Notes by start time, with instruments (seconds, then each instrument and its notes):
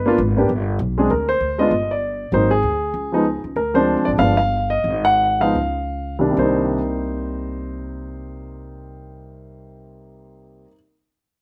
Already playing: upright bass G1, grand piano B4
0.06 grand piano A#3 B3 D4 F4
0.18 upright bass G#1
0.37 grand piano A#3 B3 D4 G4
0.49 upright bass G1
0.79 upright bass B1
0.98 grand piano G#3 C4 D4 G#4
1.10 upright bass D2, grand piano A#4
1.29 grand piano C5
1.40 upright bass D2
1.58 grand piano G#3 B3 D4 F4 D#5
1.71 upright bass G1
1.91 grand piano D5
2.32 upright bass G#1, grand piano F#3 A#3 C4 D#4 C5
2.51 grand piano G#4
2.63 upright bass D2
2.94 upright bass C#2
3.12 grand piano F3 G#3 B3 D#4
3.44 upright bass C#2
3.56 upright bass D2, grand piano A#4
3.74 grand piano F3 G#3 C4 D4 C5
3.97 upright bass C2
4.05 upright bass G#1, grand piano D5
4.18 upright bass G1, grand piano F3 G#3 B3 D4 F5
4.37 grand piano F5
4.70 grand piano D#5
4.84 upright bass G#1
5.05 grand piano F#5
5.40 grand piano F3 G#3 B3 D#4 F5
5.55 upright bass C#2
6.19 grand piano C2 D#3 G3 A#3 D4
6.31 grand piano C3 G3
6.37 upright bass C2, grand piano A#3 C5
6.43 grand piano D#4